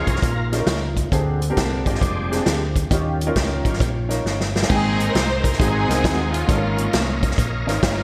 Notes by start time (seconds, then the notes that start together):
Already playing: F3 G#3 A#3 C#4 D#4 F4 G#4 A#4
0.07 C2, kick, closed hi-hat
0.16 snare
0.22 A#1, kick, closed hi-hat
0.52 C#4 D#4 F4 G#4, snare, closed hi-hat
0.58 A#4
0.66 C#2, snare, closed hi-hat
0.97 kick, closed hi-hat
1.10 D2 D3 C4 D4 F4 G4 G#4, kick, closed hi-hat
1.42 closed hi-hat
1.49 C4 D4 G4 A#4
1.57 C2, kick, snare, closed hi-hat
1.85 G#1 G3 G#3 C4 D4, kick, closed hi-hat
1.95 snare
2.01 F1, kick, closed hi-hat
2.31 C4 D4 G4 G#4, snare, closed hi-hat
2.46 D2, snare, closed hi-hat
2.76 kick, closed hi-hat
2.91 D#2 D#3 G3 C#4 D#4 F4 G4, kick, closed hi-hat
3.21 closed hi-hat
3.27 C#4 D#4 F4 A#4
3.36 C#2, kick, snare, closed hi-hat
3.65 G#1 F3 G3 C#4, kick, closed hi-hat
3.73 snare
3.80 A#1, kick, closed hi-hat
4.09 C#4 D#4 F4 A#4, snare, closed hi-hat
4.25 G1, snare
4.40 snare
4.56 snare
4.62 snare
4.69 G#1 G#2 A#3 C4 D#4 G#4 C5 G5 A#5, kick, crash
5.00 closed hi-hat
5.04 A#4
5.12 C2 C5, snare, closed hi-hat
5.42 A#4, kick, closed hi-hat
5.53 snare
5.58 G#1 G#2 C4 D#4 F#4 G#4 D#5 F#5 C6, kick, closed hi-hat
5.88 C2 B3 D#4 F#4 A#4, snare, closed hi-hat
5.92 C4
6.04 D#2, kick, snare, closed hi-hat
6.32 A#3 C#4 F4, closed hi-hat
6.47 G#1 G#2 C#4 D#4 F4 A4 A#4 C#5 F5, kick, closed hi-hat
6.53 A#4
6.78 closed hi-hat
6.93 C2, snare, closed hi-hat
7.23 kick, closed hi-hat
7.31 snare
7.38 A#1, kick, closed hi-hat
7.67 G#1 C#4 D#4 F4 A#4, snare, closed hi-hat
7.83 G1, kick, snare, closed hi-hat